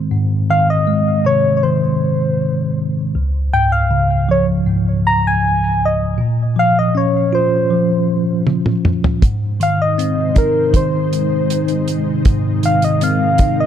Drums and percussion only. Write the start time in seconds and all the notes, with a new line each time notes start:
8.47 high tom
8.66 mid tom
8.85 mid tom
9.04 floor tom
9.22 kick, closed hi-hat
9.61 closed hi-hat
9.99 closed hi-hat
10.36 kick, closed hi-hat
10.74 kick, closed hi-hat
11.13 closed hi-hat
11.50 closed hi-hat
11.68 closed hi-hat
11.88 closed hi-hat
12.25 kick, closed hi-hat
12.63 closed hi-hat
12.82 closed hi-hat
13.01 closed hi-hat
13.38 kick, closed hi-hat